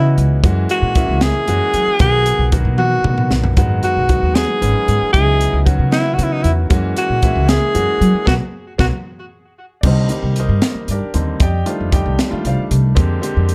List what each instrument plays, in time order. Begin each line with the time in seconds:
Already playing: upright bass C#3, grand piano E3 B3 C#4 F#4 D#5, alto saxophone E4
0.17 upright bass C#2, closed hi-hat
0.44 upright bass F#2, grand piano E3 G#3 A#3 C#4 F#4, kick, closed hi-hat
0.69 alto saxophone F#4, closed hi-hat
0.82 upright bass A#2
0.95 grand piano E3 G#3 A#3 C#4 E4, kick, closed hi-hat
1.08 upright bass C#2
1.21 alto saxophone G#4, snare, closed hi-hat
1.47 upright bass F#2, grand piano E3 G#3 A#3 C#4 F#4, closed hi-hat
1.74 upright bass F#3, closed hi-hat
1.87 muted upright bass stroke
1.99 upright bass B1, grand piano D#3 F#3 A#3 B3 F#4, alto saxophone G#4, kick, closed hi-hat
2.26 closed hi-hat
2.39 upright bass B1
2.52 grand piano D#3 F#3 A#3 B3 F#4, kick, closed hi-hat
2.65 upright bass B2
2.78 alto saxophone F#4, high tom
3.04 upright bass B2, grand piano D#3 F#3 A#3 B3 F#4, mid tom
3.18 mid tom
3.30 upright bass B1, snare
3.44 floor tom
3.57 upright bass G#1, grand piano D#3 F#3 G#3 B3 F#4, kick, closed hi-hat
3.83 alto saxophone F#4, closed hi-hat
3.97 upright bass B1
4.09 grand piano D#3 F#3 G#3 B3 F#4, kick, closed hi-hat
4.23 upright bass D#2
4.34 alto saxophone G#4, snare, closed hi-hat
4.61 upright bass G#1, grand piano D#3 F#3 G#3 B3 C#4, closed hi-hat
4.88 upright bass G#2, closed hi-hat
5.02 muted upright bass stroke
5.13 upright bass C#2, grand piano F#3 B3 C#4 D#4 E4, alto saxophone G#4, kick, closed hi-hat
5.41 closed hi-hat
5.53 upright bass C#2
5.65 grand piano D#3 F#3 B3 C#4 F#4, kick, closed hi-hat
5.79 upright bass C#3
5.92 alto saxophone E4, snare, closed hi-hat
6.14 alto saxophone F#4
6.18 upright bass C#3, grand piano D#3 F#3 B3 C#4 F#4, closed hi-hat
6.23 alto saxophone E4
6.32 alto saxophone D#4
6.42 upright bass E2, alto saxophone E4, closed hi-hat
6.70 upright bass F#2, grand piano E3 G#3 A#3 C#4 F#4, kick, closed hi-hat
6.97 alto saxophone F#4, closed hi-hat
7.10 upright bass A#2
7.22 grand piano E3 G#3 A#3 C#4 E4, kick, closed hi-hat
7.35 upright bass C#2
7.49 alto saxophone G#4, snare, closed hi-hat
7.74 upright bass F#2, grand piano E3 G#3 A#3 C#4 F#4, closed hi-hat
8.01 upright bass F#3, closed hi-hat
8.14 muted upright bass stroke
8.26 upright bass B1, grand piano F#3 A#3 B3, alto saxophone F#4, kick, snare
8.78 upright bass B1, grand piano F#3 A#3 B3, alto saxophone F#4, kick, snare
9.81 upright bass C2, grand piano D3 G3 A#3 C4 D#4 D5, kick, crash
9.86 grand piano A#4 C5 D#5
10.09 grand piano D#3 G3 A#3 C4 D#4 C5, closed hi-hat
10.13 grand piano C4 D#4 G4
10.22 upright bass C2
10.36 grand piano D#4 A#4 C5 D#5, closed hi-hat
10.49 upright bass G2
10.62 snare, closed hi-hat
10.75 muted upright bass stroke
10.88 upright bass G2, grand piano D4 G4 D5, closed hi-hat
10.92 grand piano A#4
11.01 muted upright bass stroke
11.14 upright bass D#2, grand piano D3 G3 A#3 C4 D#4, closed hi-hat
11.40 upright bass F2, grand piano G4 D5 D#5 G5, kick, closed hi-hat
11.66 grand piano D#3 G3 A3 D4 D#4 F4 A4 C5 D#5, closed hi-hat
11.80 upright bass F2
11.92 grand piano D3 D#3 G3 A3 G4 D5 D#5 G5, kick, closed hi-hat
12.06 upright bass C2
12.19 snare, closed hi-hat
12.30 grand piano D#3 G3 A3 D4 F4, muted upright bass stroke
12.45 upright bass C2, grand piano F4 C5 D5 F5, closed hi-hat
12.58 muted upright bass stroke
12.71 upright bass C2, closed hi-hat
12.95 upright bass F2, grand piano D3 G#3 A#3 C4 G4, kick, closed hi-hat
13.21 grand piano D3 G#3 A#3 C4 G4, closed hi-hat
13.37 upright bass F2
13.49 closed hi-hat